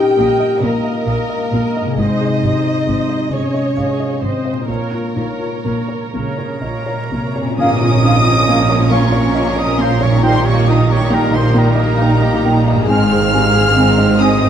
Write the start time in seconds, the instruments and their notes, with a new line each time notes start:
Already playing: harp A#2 A#3 D#4 D#5, felt piano A#2 C#4 D#4, french horn section G4, viola section A#4 D#5, violin section G5
0.18 double bass section A#1, cello section A#2, felt piano A#3, viola section A#4 D#5
0.40 felt piano D#5
0.61 double bass section A#1, cello section A#2, felt piano A#3, french horn section A#3, violin section A#4, viola section A#4 D#5
0.85 felt piano D#5
1.06 double bass section A#1, cello section A#2, viola section A#4 D#5, felt piano F5
1.29 felt piano D#5
1.51 double bass section A#1, cello section A#2, felt piano A#3, viola section A#4 D#5
1.76 felt piano D#5
1.81 harp G#2
1.85 harp C3
1.89 harp G#4
1.94 cello section G#2, harp D#5, violin section D#5
1.98 double bass section G#1, felt piano G#2, french horn section D#4, viola section C5 D#5
2.21 felt piano G#4
2.42 double bass section G#1, cello section G#2, felt piano G4, viola section C5 D#5
2.64 felt piano G#4
2.86 double bass section G#1, cello section G#2, felt piano C4, viola section C5 D#5
3.09 felt piano D#5
3.31 double bass section G#1, cello section G#2, felt piano C3, french horn section C#4, viola section G#4 D#5, violin section C#5
3.54 felt piano D#5
3.77 double bass section G#1, cello section G#2, viola section G#4 D#5, felt piano F5
4.00 felt piano D#5
4.21 double bass section G#1, cello section G#2, felt piano C4, french horn section C4, violin section C5, viola section C5 D#5
4.45 felt piano D#5
4.52 harp A#2
4.56 harp A#3
4.61 harp F4
4.65 double bass section A#1, felt piano A#2, cello section A#2, violin section A#4, viola section A#4 C#5, harp C#5
4.70 french horn section A#3
4.92 felt piano F4
5.15 double bass section A#1, cello section A#2, felt piano D#4, viola section A#4 C#5
5.39 felt piano F4
5.65 double bass section A#1, cello section A#2, felt piano A#3, viola section A#4 C#5
5.88 felt piano C#5
6.12 double bass section A#1, cello section C#3, felt piano A#3, oboe A#4, viola section A#4 C#5, violin section A#5
6.38 felt piano C#5
6.62 double bass section A#1, cello section A#2, viola section A#4 C#5, felt piano D#5
6.86 felt piano C#5
7.11 double bass section A#1, cello section C3, felt piano A#3, viola section A#4 C#5
7.36 felt piano C#5
7.41 harp A#2
7.45 harp C#4
7.50 harp F4
7.55 double bass section A#1, cello section A#2, felt piano A#2, viola section F3 C#4, french horn section F3 C#4, harp A#4
7.59 violin section A#3 A#4 D#6, clarinet C#4, oboe D#5, flute section F5, tam-tam
7.81 violin section C#4, felt piano F4
8.03 clarinet C#4, felt piano D#4, violin section F4, flute section F5
8.25 violin section C#4, felt piano F4
8.47 felt piano A#3, violin section A#3, clarinet C#4, flute section F5
8.69 violin section C#4, felt piano C#5
8.90 felt piano A#3, clarinet C#4, violin section F4 C#6, oboe C#5, flute section F5
9.12 violin section C#4, felt piano C#5
9.35 violin section A#3, clarinet C#4, felt piano D#5, flute section F5
9.56 violin section C#4 D#6, felt piano C#5, oboe D#5
9.77 felt piano A#3, clarinet C#4, oboe C5, violin section C6
9.82 violin section F4, flute section F5
10.01 felt piano C#5, oboe C#5, violin section C#6
10.06 harp A#2, violin section C#4
10.10 harp D#4
10.15 harp G4
10.19 felt piano A#2, viola section D#3 D#4, french horn section G3 D#4, clarinet D#4, harp A#4
10.23 oboe C5, flute section G5, violin section C6
10.27 violin section G3
10.43 felt piano G4, oboe C#5
10.49 violin section A#3 C#6
10.65 clarinet D#4, felt piano F4, oboe D#5, flute section G5
10.70 violin section D#4 D#6
10.87 felt piano G4, violin section C#6
10.92 violin section G4, oboe C#5
11.10 felt piano A#3, clarinet D#4, flute section G5, violin section A#5
11.14 violin section D#4, oboe A#4
11.32 violin section A#3 C6, oboe C5, felt piano D#5
11.54 violin section G3 A#5, felt piano A#3, clarinet D#4, flute section G5
11.59 oboe A#4
11.75 violin section A#3, felt piano D#5
11.98 clarinet D#4, violin section D#4, felt piano F5, flute section G5
12.22 violin section G4, felt piano D#5
12.44 felt piano A#3, clarinet D#4, violin section D#4, flute section G5
12.68 violin section A#3, felt piano D#5
12.72 harp G#2
12.76 harp D#4
12.81 harp G#4
12.86 double bass section G#1, felt piano G#2, cello section G#2, french horn section G#3 C4, clarinet C4, viola section C4, harp C5, violin section F6
12.90 violin section G#3 C5, oboe F5, flute section G#5
13.12 violin section C4, felt piano G#4
13.33 clarinet C4, violin section D#4, felt piano G4, flute section G#5
13.54 violin section G#4, felt piano G#4
13.75 felt piano C4, clarinet C4, violin section D#4, flute section G#5
13.98 violin section C4, felt piano D#5
14.19 violin section G#3 D#6, felt piano C4, clarinet C4, oboe D#5, flute section G#5
14.40 violin section C4, felt piano D#5